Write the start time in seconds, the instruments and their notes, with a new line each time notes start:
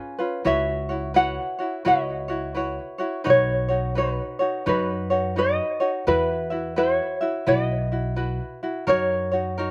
Already playing: ukulele C#4 F4 G#4 B4 C#5
0.19 ukulele C#4 F4 B4
0.45 upright bass C#2, ukulele E4 F#4 B4 C#5 E5
0.89 ukulele E4 F#4 C#5
1.14 ukulele E4 F#4 B4 C#5 F#5
1.59 ukulele E4 F#4 C#5
1.85 upright bass C#2, ukulele E4 F#4 B4 C#5 D#5
2.28 ukulele E4 F#4 C#5
2.55 ukulele E4 F#4 B4 C#5
2.98 ukulele E4 F#4 C#5
3.24 upright bass B1, ukulele D#4 F#4 B4 C#5
3.30 ukulele C#5
3.68 ukulele D#4 F#4 C#5
3.95 ukulele D#4 F#4 B4 C#5
4.39 ukulele D#4 F#4 C#5
4.66 upright bass F#2, ukulele D#4 F#4 B4 C#5
5.10 ukulele D#4 F#4 C#5
5.36 ukulele D#4 F#4 B4 C#5 D#5
5.80 ukulele D#4 F#4 C#5
6.07 upright bass E2, ukulele E4 F#4 B4 E5
6.50 ukulele E4 F#4 E5
6.76 ukulele E4 F#4 B4 C#5 E5
7.21 ukulele E4 F#4 E5
7.47 upright bass B1, ukulele E4 F#4 B4 D#5
7.92 ukulele E4 F#4
8.16 ukulele E4 F#4 B4
8.63 ukulele E4 F#4
8.87 upright bass F#2, ukulele D#4 F#4 A#4 C#5
9.31 ukulele D#4 F#4 C#5
9.58 ukulele D#4 F#4 A#4 C#5